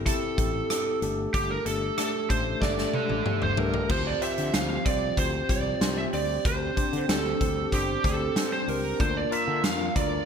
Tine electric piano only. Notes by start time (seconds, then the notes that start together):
Already playing: C4 E4 G4 A4
0.05 C4 E4 G4 A4
0.37 C4 E4 G4 A4
0.70 C4 E4 G4 A4
1.02 A3 D4 G4 A4
1.65 A3 D4 G4 A4
1.97 A3 D4 G4 A4
2.29 A3 D4 G4 A4
2.61 A3 D4 G4 A4
2.93 A3 D4 G4 A4
3.25 A3 D4 G4 A4
3.57 A3 D4 G4 A4
3.90 C4 F4 G4 C5
4.21 C4 F4 G4 C5
4.53 C4 F4 G4 C5
4.85 C4 F4 G4 C5
5.17 C4 F4 G4 C5
5.49 C4 F4 G4 C5
5.81 C4 F4 G4 C5
6.12 C4 D4 G4 C5
6.76 C4 D4 G4 C5
7.08 C4 D4 G4 C5
7.40 C4 D4 G4 C5
7.72 C4 D4 G4 C5
8.04 C4 D4 G4 C5
8.36 C4 D4 G4 C5
8.67 C4 D4 G4 C5
8.99 A#3 D4 F4 A#4
9.31 A#3 D4 F4 A#4
9.63 A#3 D4 F4 A#4
9.95 A#3 D4 F4 A#4